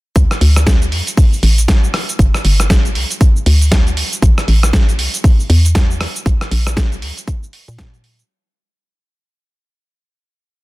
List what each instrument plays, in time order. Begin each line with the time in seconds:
0.16 fm bass D2, kick, closed hi-hat, shaker
0.31 cross-stick, shaker
0.41 fm bass D2, open hi-hat
0.56 cross-stick, closed hi-hat, shaker
0.67 kick, snare, closed hi-hat, shaker
0.82 closed hi-hat, shaker
0.92 fm bass F2, open hi-hat
1.07 closed hi-hat, shaker
1.17 kick, open hi-hat, shaker
1.33 shaker
1.43 fm bass A1, open hi-hat
1.58 closed hi-hat, shaker
1.68 kick, snare, closed hi-hat, shaker
1.84 shaker
1.94 cross-stick, open hi-hat
2.09 closed hi-hat, shaker
2.19 fm bass G1, kick, closed hi-hat, shaker
2.34 cross-stick, shaker
2.45 fm bass G1, open hi-hat
2.60 cross-stick, closed hi-hat, shaker
2.70 kick, snare, closed hi-hat, shaker
2.85 closed hi-hat, shaker
2.95 fm bass C2, open hi-hat
3.11 closed hi-hat, shaker
3.21 kick, closed hi-hat, shaker
3.36 shaker
3.46 fm bass D2, open hi-hat
3.61 open hi-hat, shaker
3.72 kick, snare, closed hi-hat, shaker
3.87 closed hi-hat, shaker
3.97 open hi-hat
4.12 closed hi-hat, shaker
4.22 fm bass A1, kick, closed hi-hat, shaker
4.38 cross-stick, shaker
4.48 fm bass A1, open hi-hat
4.63 cross-stick, shaker
4.73 kick, snare, closed hi-hat, shaker
4.89 closed hi-hat, shaker
4.99 fm bass C2, open hi-hat
5.14 closed hi-hat, shaker
5.24 kick, open hi-hat, shaker
5.40 shaker
5.50 fm bass E2, open hi-hat
5.65 closed hi-hat, shaker
5.75 kick, snare, closed hi-hat, shaker
5.91 shaker
6.01 cross-stick, open hi-hat
6.16 closed hi-hat, shaker
6.26 fm bass A#1, kick, closed hi-hat, shaker
6.41 cross-stick, shaker
6.51 fm bass A#1, open hi-hat
6.67 cross-stick, closed hi-hat, shaker
6.77 kick, snare, closed hi-hat, shaker
6.92 closed hi-hat, shaker
7.02 fm bass D2, open hi-hat
7.18 closed hi-hat, shaker
7.28 kick, closed hi-hat, shaker
7.43 shaker
7.53 open hi-hat
7.68 fm bass A#2, open hi-hat, shaker
7.78 kick, snare, closed hi-hat, shaker
7.94 closed hi-hat, shaker
8.04 open hi-hat
8.19 shaker